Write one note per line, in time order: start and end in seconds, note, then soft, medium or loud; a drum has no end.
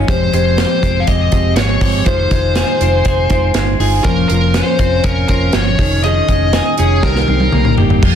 0.00 0.32 G#3 soft
0.00 0.13 C#4 medium
0.07 0.29 F1 loud
0.07 0.31 F3 medium
0.07 2.06 F3 medium
0.07 0.31 G#3 medium
0.07 0.32 C4 medium
0.07 0.33 G4 medium
0.07 0.33 C5 medium
0.07 kick loud
0.07 closed hi-hat medium
0.32 0.63 F1 medium
0.32 0.81 F3 medium
0.32 0.83 G#3 medium
0.32 1.57 G#3 medium
0.32 0.83 C4 medium
0.32 0.83 G4 medium
0.32 1.03 C5 medium
0.32 closed hi-hat medium
0.57 1.06 G4 medium
0.57 snare loud
0.57 closed hi-hat medium
0.82 1.03 F1 medium
0.82 1.30 F3 medium
0.82 1.32 G#3 medium
0.82 2.81 C4 medium
0.82 1.33 C4 medium
0.82 1.33 G4 medium
0.82 kick medium
0.82 closed hi-hat medium
1.00 1.07 F5 medium
1.07 1.28 F1 medium
1.07 1.81 G4 medium
1.07 1.55 D#5 medium
1.07 kick medium
1.07 closed hi-hat medium
1.31 1.57 F1 loud
1.31 1.55 F3 medium
1.31 1.56 G#3 medium
1.31 1.56 C4 medium
1.31 1.57 G4 medium
1.31 kick medium
1.31 closed hi-hat medium
1.56 1.77 G#1 medium
1.56 1.80 F3 medium
1.56 1.81 G#3 medium
1.56 2.12 G#3 medium
1.56 1.82 C4 medium
1.56 1.82 G4 medium
1.56 2.05 C#5 medium
1.56 snare loud
1.56 closed hi-hat medium
1.81 2.02 G1 medium
1.81 2.04 F3 medium
1.81 2.04 G#3 medium
1.81 2.06 C4 medium
1.81 2.12 G4 medium
1.81 2.06 G4 medium
1.81 kick medium
1.81 open hi-hat medium
2.05 2.27 F1 medium
2.05 4.04 D#3 medium
2.05 2.31 F3 medium
2.05 2.29 G#3 medium
2.05 2.29 D#4 medium
2.05 2.30 F4 medium
2.05 3.51 C5 medium
2.05 2.31 C5 medium
2.05 kick loud
2.05 closed hi-hat medium
2.30 2.62 F1 medium
2.30 2.78 G#3 medium
2.30 3.54 G#3 medium
2.30 2.79 D#4 medium
2.30 2.81 F4 medium
2.30 2.82 C5 medium
2.30 kick medium
2.30 closed hi-hat medium
2.55 3.05 G#4 medium
2.55 snare loud
2.55 closed hi-hat medium
2.79 3.01 F1 medium
2.79 3.28 G#3 medium
2.79 3.31 C4 medium
2.79 3.29 D#4 medium
2.79 3.31 F4 medium
2.79 3.32 C5 medium
2.79 closed hi-hat medium
3.05 3.79 G#4 medium
3.05 kick medium
3.05 closed hi-hat medium
3.30 3.51 F1 loud
3.30 3.53 G#3 medium
3.30 4.11 C4 medium
3.30 3.54 D#4 medium
3.30 3.54 F4 medium
3.30 3.55 C5 medium
3.30 kick medium
3.30 closed hi-hat medium
3.54 3.75 G1 medium
3.54 3.78 G#3 medium
3.54 4.10 G#3 medium
3.54 3.79 D#4 medium
3.54 3.80 F4 medium
3.54 3.81 C5 medium
3.54 snare medium
3.54 closed hi-hat medium
3.79 4.00 G1 medium
3.79 4.05 G#3 medium
3.79 4.05 D#4 medium
3.79 4.05 F4 medium
3.79 4.10 G#4 medium
3.79 4.06 C5 medium
3.79 open hi-hat medium
4.04 4.25 F1 medium
4.04 4.28 F3 medium
4.04 4.30 F3 medium
4.04 4.28 A#3 medium
4.04 4.30 C#4 medium
4.04 4.30 F4 medium
4.04 4.28 A#4 medium
4.04 4.31 C5 medium
4.04 kick loud
4.04 closed hi-hat medium
4.29 4.60 F1 medium
4.29 5.53 F3 medium
4.29 4.77 A#3 medium
4.29 4.79 C#4 medium
4.29 4.80 F4 medium
4.29 4.55 A#4 medium
4.29 4.80 C5 medium
4.29 closed hi-hat medium
4.54 5.04 C#4 medium
4.54 5.06 C5 medium
4.54 snare loud
4.54 closed hi-hat medium
4.79 5.00 F1 medium
4.79 5.28 A#3 medium
4.79 5.28 C4 medium
4.79 5.29 C#4 medium
4.79 5.29 F4 medium
4.79 5.30 C5 medium
4.79 kick medium
4.79 closed hi-hat medium
5.04 5.25 F1 loud
5.04 5.84 C#4 medium
5.04 5.27 A#4 medium
5.04 kick medium
5.04 closed hi-hat medium
5.28 5.49 F1 loud
5.28 5.52 A#3 medium
5.28 5.84 C4 medium
5.28 5.53 C#4 medium
5.28 5.54 F4 medium
5.28 5.55 A#4 medium
5.28 5.55 C5 medium
5.28 kick medium
5.28 closed hi-hat medium
5.53 5.75 G1 medium
5.53 5.79 F3 medium
5.53 5.79 A#3 medium
5.53 5.78 C#4 soft
5.53 5.80 F4 medium
5.53 5.80 C5 medium
5.53 6.03 C#5 loud
5.53 snare loud
5.53 closed hi-hat medium
5.78 6.20 F1 medium
5.78 6.04 D#3 medium
5.78 6.02 F3 medium
5.78 6.03 C#4 medium
5.78 6.03 D#4 medium
5.78 6.04 G#4 medium
5.78 kick loud
5.78 open hi-hat medium
6.04 7.03 D#3 medium
6.04 6.27 F3 medium
6.04 6.28 C#4 medium
6.04 6.29 D#4 medium
6.04 6.29 G#4 medium
6.04 6.74 D#5 medium
6.04 closed hi-hat medium
6.28 6.59 F1 medium
6.28 6.77 F3 soft
6.28 7.08 G#3 medium
6.28 6.77 C#4 medium
6.28 6.78 D#4 medium
6.28 6.79 G#4 medium
6.28 kick medium
6.28 closed hi-hat medium
6.53 7.08 G#4 medium
6.53 snare medium
6.53 closed hi-hat medium
6.78 6.99 F1 medium
6.78 7.03 F3 medium
6.78 7.03 C#4 medium
6.78 7.08 C#4 medium
6.78 7.03 D#4 medium
6.78 7.02 G#4 medium
6.78 7.04 G#4 medium
6.78 closed hi-hat medium
7.02 7.24 C2 medium
7.02 7.28 C3 medium
7.02 8.02 D#3 medium
7.02 7.27 G3 medium
7.02 7.27 A#3 medium
7.02 7.28 D#4 medium
7.02 7.29 G4 medium
7.02 7.74 A#4 medium
7.02 kick medium
7.02 snare soft
7.15 snare soft
7.28 7.49 C2 medium
7.28 7.51 G3 medium
7.28 7.52 A#3 medium
7.28 8.15 C4 medium
7.28 7.53 D#4 medium
7.28 7.54 G4 medium
7.28 high tom medium
7.40 high tom medium
7.52 7.73 C2 medium
7.52 7.76 G3 medium
7.52 8.08 A#3 medium
7.52 7.77 A#3 medium
7.52 7.78 D#4 medium
7.52 7.79 G4 soft
7.52 mid tom medium
7.65 mid tom medium
7.77 7.98 G1 medium
7.77 8.02 G3 medium
7.77 8.03 A#3 medium
7.77 8.04 D#4 medium
7.77 8.07 G4 medium
7.77 8.04 G4 medium
7.77 floor tom medium
7.90 floor tom medium
8.03 8.15 F1 loud
8.03 8.15 F3 medium
8.03 kick loud
8.03 crash medium